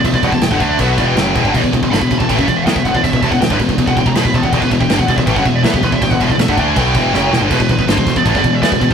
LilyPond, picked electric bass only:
\new Staff \with { instrumentName = "Picked electric bass" } { \clef bass \time 4/4 \key e \minor \tempo 4 = 161 e,,16 e,,16 e,,16 e,,16 e,,16 g,,16 d,8 b,,8 e,,8 fis,,8 e,,16 g,,16 | e,,16 e,,16 e,,16 e,,16 g,,16 e,,16 e,,16 e,,16 a,,16 fis,,16 e,,8 e,16 e,,16 e,,16 e,,16 | e,,16 e,,16 e,,16 e,,16 e,,16 g,,16 e,,16 e,,16 e,,16 e,,16 e,,16 e,,16 e,,16 e,,16 e,,16 e,,16 | e,,16 e,,16 e,,16 e,,16 g,,16 e,,16 e,,16 e,,16 a,,16 fis,,16 e,,8 e,16 e,,16 e,,16 e,,16 |
e,,16 e,,16 e,,16 e,,16 e,,16 g,,16 d,8 b,,8 e,,8 fis,,8 e,,16 g,,16 | e,,16 e,,16 e,,16 e,,16 g,,16 e,,16 e,,16 e,,16 a,,16 fis,,16 e,,8 e,16 e,,16 e,,16 e,,16 | }